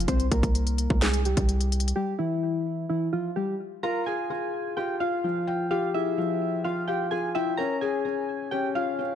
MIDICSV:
0, 0, Header, 1, 5, 480
1, 0, Start_track
1, 0, Key_signature, -4, "minor"
1, 0, Tempo, 468750
1, 84, Time_signature, 4, 2, 24, 8
1, 9370, End_track
2, 0, Start_track
2, 0, Title_t, "Synth keys"
2, 0, Program_c, 0, 88
2, 82, Note_on_c, 0, 72, 98
2, 89, Note_on_c, 0, 60, 82
2, 271, Note_off_c, 0, 72, 0
2, 276, Note_off_c, 0, 60, 0
2, 321, Note_on_c, 0, 70, 66
2, 329, Note_on_c, 0, 58, 54
2, 1002, Note_off_c, 0, 70, 0
2, 1006, Note_off_c, 0, 58, 0
2, 1047, Note_on_c, 0, 68, 80
2, 1055, Note_on_c, 0, 56, 60
2, 1234, Note_off_c, 0, 68, 0
2, 1239, Note_off_c, 0, 56, 0
2, 1285, Note_on_c, 0, 67, 67
2, 1294, Note_on_c, 0, 55, 55
2, 1964, Note_off_c, 0, 67, 0
2, 1968, Note_off_c, 0, 55, 0
2, 2004, Note_on_c, 0, 67, 94
2, 2013, Note_on_c, 0, 55, 74
2, 2193, Note_off_c, 0, 67, 0
2, 2198, Note_off_c, 0, 55, 0
2, 2239, Note_on_c, 0, 64, 79
2, 2248, Note_on_c, 0, 52, 66
2, 2921, Note_off_c, 0, 64, 0
2, 2925, Note_off_c, 0, 52, 0
2, 2964, Note_on_c, 0, 64, 79
2, 2973, Note_on_c, 0, 52, 68
2, 3153, Note_off_c, 0, 64, 0
2, 3158, Note_off_c, 0, 52, 0
2, 3203, Note_on_c, 0, 65, 83
2, 3211, Note_on_c, 0, 53, 61
2, 3392, Note_off_c, 0, 65, 0
2, 3397, Note_off_c, 0, 53, 0
2, 3441, Note_on_c, 0, 67, 83
2, 3449, Note_on_c, 0, 55, 65
2, 3631, Note_off_c, 0, 67, 0
2, 3636, Note_off_c, 0, 55, 0
2, 3923, Note_on_c, 0, 82, 91
2, 3931, Note_on_c, 0, 70, 76
2, 4112, Note_off_c, 0, 82, 0
2, 4117, Note_off_c, 0, 70, 0
2, 4161, Note_on_c, 0, 80, 81
2, 4170, Note_on_c, 0, 68, 66
2, 4842, Note_off_c, 0, 80, 0
2, 4846, Note_off_c, 0, 68, 0
2, 4882, Note_on_c, 0, 79, 88
2, 4890, Note_on_c, 0, 67, 68
2, 5071, Note_off_c, 0, 79, 0
2, 5076, Note_off_c, 0, 67, 0
2, 5122, Note_on_c, 0, 77, 89
2, 5130, Note_on_c, 0, 65, 69
2, 5802, Note_off_c, 0, 77, 0
2, 5806, Note_off_c, 0, 65, 0
2, 5844, Note_on_c, 0, 77, 98
2, 5852, Note_on_c, 0, 65, 79
2, 6033, Note_off_c, 0, 77, 0
2, 6038, Note_off_c, 0, 65, 0
2, 6086, Note_on_c, 0, 76, 93
2, 6095, Note_on_c, 0, 64, 72
2, 6764, Note_off_c, 0, 76, 0
2, 6769, Note_off_c, 0, 64, 0
2, 6803, Note_on_c, 0, 77, 94
2, 6812, Note_on_c, 0, 65, 69
2, 6992, Note_off_c, 0, 77, 0
2, 6997, Note_off_c, 0, 65, 0
2, 7041, Note_on_c, 0, 79, 84
2, 7049, Note_on_c, 0, 67, 64
2, 7231, Note_off_c, 0, 79, 0
2, 7236, Note_off_c, 0, 67, 0
2, 7280, Note_on_c, 0, 80, 87
2, 7288, Note_on_c, 0, 68, 68
2, 7470, Note_off_c, 0, 80, 0
2, 7475, Note_off_c, 0, 68, 0
2, 7524, Note_on_c, 0, 76, 97
2, 7532, Note_on_c, 0, 64, 72
2, 7713, Note_off_c, 0, 76, 0
2, 7717, Note_off_c, 0, 64, 0
2, 7756, Note_on_c, 0, 82, 102
2, 7765, Note_on_c, 0, 70, 80
2, 7948, Note_off_c, 0, 82, 0
2, 7953, Note_off_c, 0, 70, 0
2, 8001, Note_on_c, 0, 80, 75
2, 8009, Note_on_c, 0, 68, 59
2, 8681, Note_off_c, 0, 80, 0
2, 8686, Note_off_c, 0, 68, 0
2, 8717, Note_on_c, 0, 79, 85
2, 8725, Note_on_c, 0, 67, 68
2, 8909, Note_off_c, 0, 79, 0
2, 8914, Note_off_c, 0, 67, 0
2, 8962, Note_on_c, 0, 77, 80
2, 8971, Note_on_c, 0, 65, 59
2, 9370, Note_off_c, 0, 65, 0
2, 9370, Note_off_c, 0, 77, 0
2, 9370, End_track
3, 0, Start_track
3, 0, Title_t, "Felt piano"
3, 0, Program_c, 1, 0
3, 3924, Note_on_c, 1, 65, 105
3, 4112, Control_c, 1, 64, 127
3, 4166, Note_on_c, 1, 68, 84
3, 4389, Note_off_c, 1, 65, 0
3, 4405, Note_on_c, 1, 65, 89
3, 4869, Note_off_c, 1, 65, 0
3, 4885, Note_on_c, 1, 65, 89
3, 5125, Note_on_c, 1, 77, 85
3, 5365, Note_off_c, 1, 68, 0
3, 5365, Note_on_c, 1, 53, 85
3, 5606, Note_on_c, 1, 79, 90
3, 5845, Note_on_c, 1, 67, 104
3, 6085, Note_off_c, 1, 65, 0
3, 6085, Note_on_c, 1, 68, 82
3, 6310, Note_off_c, 1, 53, 0
3, 6325, Note_off_c, 1, 77, 0
3, 6326, Note_on_c, 1, 53, 89
3, 6805, Note_off_c, 1, 79, 0
3, 6806, Note_on_c, 1, 65, 92
3, 7045, Note_off_c, 1, 67, 0
3, 7046, Note_on_c, 1, 77, 85
3, 7270, Note_off_c, 1, 65, 0
3, 7285, Note_off_c, 1, 68, 0
3, 7285, Note_on_c, 1, 65, 87
3, 7525, Note_off_c, 1, 53, 0
3, 7526, Note_on_c, 1, 79, 96
3, 7765, Note_off_c, 1, 65, 0
3, 7765, Note_off_c, 1, 77, 0
3, 7765, Note_off_c, 1, 79, 0
3, 7767, Note_on_c, 1, 61, 105
3, 7775, Control_c, 1, 64, 0
3, 7975, Control_c, 1, 64, 127
3, 8007, Note_on_c, 1, 68, 88
3, 8230, Note_off_c, 1, 61, 0
3, 8246, Note_on_c, 1, 61, 76
3, 8709, Note_off_c, 1, 61, 0
3, 8724, Note_on_c, 1, 61, 93
3, 8963, Note_on_c, 1, 77, 92
3, 9189, Note_off_c, 1, 61, 0
3, 9204, Note_on_c, 1, 61, 82
3, 9206, Note_off_c, 1, 68, 0
3, 9370, Note_off_c, 1, 61, 0
3, 9370, Note_off_c, 1, 77, 0
3, 9370, End_track
4, 0, Start_track
4, 0, Title_t, "808-style bass"
4, 0, Program_c, 2, 38
4, 83, Note_on_c, 2, 36, 113
4, 314, Note_off_c, 2, 36, 0
4, 323, Note_on_c, 2, 36, 108
4, 436, Note_off_c, 2, 36, 0
4, 442, Note_on_c, 2, 36, 100
4, 904, Note_off_c, 2, 36, 0
4, 924, Note_on_c, 2, 36, 104
4, 1385, Note_off_c, 2, 36, 0
4, 1404, Note_on_c, 2, 36, 101
4, 1980, Note_off_c, 2, 36, 0
4, 9370, End_track
5, 0, Start_track
5, 0, Title_t, "Drums"
5, 3, Note_on_c, 9, 42, 65
5, 83, Note_off_c, 9, 42, 0
5, 83, Note_on_c, 9, 36, 111
5, 83, Note_on_c, 9, 42, 76
5, 185, Note_off_c, 9, 36, 0
5, 185, Note_off_c, 9, 42, 0
5, 201, Note_on_c, 9, 42, 55
5, 304, Note_off_c, 9, 42, 0
5, 323, Note_on_c, 9, 36, 99
5, 323, Note_on_c, 9, 42, 75
5, 425, Note_off_c, 9, 36, 0
5, 425, Note_off_c, 9, 42, 0
5, 442, Note_on_c, 9, 36, 96
5, 444, Note_on_c, 9, 42, 54
5, 544, Note_off_c, 9, 36, 0
5, 546, Note_off_c, 9, 42, 0
5, 564, Note_on_c, 9, 42, 85
5, 666, Note_off_c, 9, 42, 0
5, 683, Note_on_c, 9, 42, 61
5, 785, Note_off_c, 9, 42, 0
5, 802, Note_on_c, 9, 42, 82
5, 905, Note_off_c, 9, 42, 0
5, 924, Note_on_c, 9, 36, 94
5, 1026, Note_off_c, 9, 36, 0
5, 1044, Note_on_c, 9, 38, 115
5, 1044, Note_on_c, 9, 42, 80
5, 1146, Note_off_c, 9, 38, 0
5, 1146, Note_off_c, 9, 42, 0
5, 1162, Note_on_c, 9, 42, 63
5, 1264, Note_off_c, 9, 42, 0
5, 1283, Note_on_c, 9, 42, 52
5, 1386, Note_off_c, 9, 42, 0
5, 1403, Note_on_c, 9, 36, 90
5, 1403, Note_on_c, 9, 42, 84
5, 1505, Note_off_c, 9, 42, 0
5, 1506, Note_off_c, 9, 36, 0
5, 1523, Note_on_c, 9, 42, 65
5, 1625, Note_off_c, 9, 42, 0
5, 1644, Note_on_c, 9, 42, 55
5, 1747, Note_off_c, 9, 42, 0
5, 1763, Note_on_c, 9, 42, 69
5, 1844, Note_off_c, 9, 42, 0
5, 1844, Note_on_c, 9, 42, 68
5, 1924, Note_off_c, 9, 42, 0
5, 1924, Note_on_c, 9, 42, 67
5, 2026, Note_off_c, 9, 42, 0
5, 9370, End_track
0, 0, End_of_file